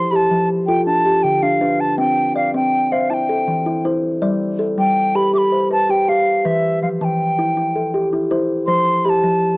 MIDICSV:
0, 0, Header, 1, 3, 480
1, 0, Start_track
1, 0, Tempo, 372208
1, 2561, Time_signature, 12, 3, 24, 8
1, 12343, End_track
2, 0, Start_track
2, 0, Title_t, "Flute"
2, 0, Program_c, 0, 73
2, 0, Note_on_c, 0, 84, 115
2, 142, Note_on_c, 0, 83, 91
2, 161, Note_off_c, 0, 84, 0
2, 204, Note_on_c, 0, 81, 99
2, 217, Note_off_c, 0, 83, 0
2, 630, Note_off_c, 0, 81, 0
2, 863, Note_on_c, 0, 79, 93
2, 1093, Note_off_c, 0, 79, 0
2, 1109, Note_on_c, 0, 81, 94
2, 1587, Note_on_c, 0, 79, 97
2, 1606, Note_off_c, 0, 81, 0
2, 1840, Note_on_c, 0, 77, 93
2, 1859, Note_off_c, 0, 79, 0
2, 2326, Note_on_c, 0, 81, 93
2, 2346, Note_off_c, 0, 77, 0
2, 2561, Note_off_c, 0, 81, 0
2, 2568, Note_on_c, 0, 79, 99
2, 3013, Note_off_c, 0, 79, 0
2, 3048, Note_on_c, 0, 77, 84
2, 3269, Note_off_c, 0, 77, 0
2, 3292, Note_on_c, 0, 79, 93
2, 3767, Note_on_c, 0, 77, 80
2, 3786, Note_off_c, 0, 79, 0
2, 3999, Note_on_c, 0, 81, 77
2, 4019, Note_off_c, 0, 77, 0
2, 4046, Note_on_c, 0, 79, 84
2, 4059, Note_off_c, 0, 81, 0
2, 4963, Note_off_c, 0, 79, 0
2, 6177, Note_on_c, 0, 79, 105
2, 6648, Note_on_c, 0, 83, 105
2, 6667, Note_off_c, 0, 79, 0
2, 6886, Note_off_c, 0, 83, 0
2, 6892, Note_on_c, 0, 86, 90
2, 6939, Note_on_c, 0, 83, 97
2, 6952, Note_off_c, 0, 86, 0
2, 7334, Note_off_c, 0, 83, 0
2, 7377, Note_on_c, 0, 81, 107
2, 7612, Note_on_c, 0, 79, 98
2, 7632, Note_off_c, 0, 81, 0
2, 7851, Note_on_c, 0, 77, 102
2, 7870, Note_off_c, 0, 79, 0
2, 8325, Note_on_c, 0, 76, 92
2, 8345, Note_off_c, 0, 77, 0
2, 8793, Note_off_c, 0, 76, 0
2, 8801, Note_on_c, 0, 77, 73
2, 8878, Note_off_c, 0, 77, 0
2, 9042, Note_on_c, 0, 81, 75
2, 9084, Note_on_c, 0, 79, 82
2, 9097, Note_off_c, 0, 81, 0
2, 10426, Note_off_c, 0, 79, 0
2, 11177, Note_on_c, 0, 84, 107
2, 11667, Note_on_c, 0, 83, 88
2, 11686, Note_off_c, 0, 84, 0
2, 11728, Note_on_c, 0, 81, 96
2, 11741, Note_off_c, 0, 83, 0
2, 12343, Note_off_c, 0, 81, 0
2, 12343, End_track
3, 0, Start_track
3, 0, Title_t, "Kalimba"
3, 0, Program_c, 1, 108
3, 0, Note_on_c, 1, 53, 90
3, 0, Note_on_c, 1, 72, 75
3, 154, Note_off_c, 1, 53, 0
3, 158, Note_on_c, 1, 67, 71
3, 396, Note_off_c, 1, 72, 0
3, 399, Note_on_c, 1, 53, 86
3, 879, Note_off_c, 1, 53, 0
3, 879, Note_off_c, 1, 67, 0
3, 882, Note_on_c, 1, 65, 78
3, 883, Note_on_c, 1, 69, 65
3, 1119, Note_on_c, 1, 62, 65
3, 1120, Note_off_c, 1, 65, 0
3, 1359, Note_on_c, 1, 67, 70
3, 1361, Note_off_c, 1, 69, 0
3, 1600, Note_on_c, 1, 50, 66
3, 1823, Note_off_c, 1, 62, 0
3, 1839, Note_on_c, 1, 62, 75
3, 2061, Note_off_c, 1, 62, 0
3, 2077, Note_on_c, 1, 62, 82
3, 2078, Note_on_c, 1, 71, 68
3, 2081, Note_off_c, 1, 50, 0
3, 2081, Note_off_c, 1, 67, 0
3, 2553, Note_on_c, 1, 79, 69
3, 2554, Note_on_c, 1, 60, 85
3, 2560, Note_off_c, 1, 62, 0
3, 2801, Note_off_c, 1, 71, 0
3, 3037, Note_on_c, 1, 74, 72
3, 3039, Note_off_c, 1, 60, 0
3, 3278, Note_on_c, 1, 60, 81
3, 3279, Note_off_c, 1, 79, 0
3, 3761, Note_off_c, 1, 60, 0
3, 3761, Note_off_c, 1, 74, 0
3, 3765, Note_on_c, 1, 76, 62
3, 3766, Note_on_c, 1, 72, 73
3, 4004, Note_on_c, 1, 64, 61
3, 4005, Note_off_c, 1, 72, 0
3, 4245, Note_off_c, 1, 76, 0
3, 4245, Note_on_c, 1, 69, 69
3, 4483, Note_on_c, 1, 52, 75
3, 4707, Note_off_c, 1, 64, 0
3, 4722, Note_on_c, 1, 64, 74
3, 4950, Note_off_c, 1, 64, 0
3, 4964, Note_off_c, 1, 52, 0
3, 4965, Note_on_c, 1, 64, 79
3, 4965, Note_on_c, 1, 72, 65
3, 4966, Note_off_c, 1, 69, 0
3, 5440, Note_on_c, 1, 55, 87
3, 5440, Note_on_c, 1, 74, 77
3, 5445, Note_off_c, 1, 64, 0
3, 5685, Note_off_c, 1, 72, 0
3, 5918, Note_on_c, 1, 69, 74
3, 5923, Note_off_c, 1, 55, 0
3, 6161, Note_on_c, 1, 55, 81
3, 6162, Note_off_c, 1, 74, 0
3, 6641, Note_off_c, 1, 69, 0
3, 6643, Note_off_c, 1, 55, 0
3, 6643, Note_on_c, 1, 67, 72
3, 6645, Note_on_c, 1, 71, 59
3, 6865, Note_off_c, 1, 67, 0
3, 6880, Note_on_c, 1, 67, 67
3, 7122, Note_on_c, 1, 72, 68
3, 7345, Note_off_c, 1, 71, 0
3, 7360, Note_on_c, 1, 71, 70
3, 7585, Note_off_c, 1, 67, 0
3, 7600, Note_on_c, 1, 67, 74
3, 7828, Note_off_c, 1, 67, 0
3, 7842, Note_off_c, 1, 71, 0
3, 7842, Note_off_c, 1, 72, 0
3, 7843, Note_on_c, 1, 67, 76
3, 8318, Note_on_c, 1, 71, 81
3, 8320, Note_on_c, 1, 52, 86
3, 8323, Note_off_c, 1, 67, 0
3, 8800, Note_off_c, 1, 52, 0
3, 8801, Note_on_c, 1, 53, 68
3, 9039, Note_off_c, 1, 71, 0
3, 9043, Note_on_c, 1, 52, 90
3, 9519, Note_off_c, 1, 53, 0
3, 9521, Note_off_c, 1, 52, 0
3, 9525, Note_on_c, 1, 64, 77
3, 9745, Note_off_c, 1, 64, 0
3, 9761, Note_on_c, 1, 64, 64
3, 10001, Note_on_c, 1, 69, 66
3, 10240, Note_on_c, 1, 67, 74
3, 10465, Note_off_c, 1, 64, 0
3, 10481, Note_on_c, 1, 64, 73
3, 10701, Note_off_c, 1, 64, 0
3, 10716, Note_on_c, 1, 64, 82
3, 10716, Note_on_c, 1, 72, 69
3, 10717, Note_off_c, 1, 67, 0
3, 10717, Note_off_c, 1, 69, 0
3, 11174, Note_off_c, 1, 72, 0
3, 11189, Note_on_c, 1, 72, 80
3, 11190, Note_on_c, 1, 53, 87
3, 11194, Note_off_c, 1, 64, 0
3, 11670, Note_off_c, 1, 53, 0
3, 11672, Note_on_c, 1, 67, 73
3, 11909, Note_off_c, 1, 72, 0
3, 11909, Note_on_c, 1, 53, 84
3, 12343, Note_off_c, 1, 53, 0
3, 12343, Note_off_c, 1, 67, 0
3, 12343, End_track
0, 0, End_of_file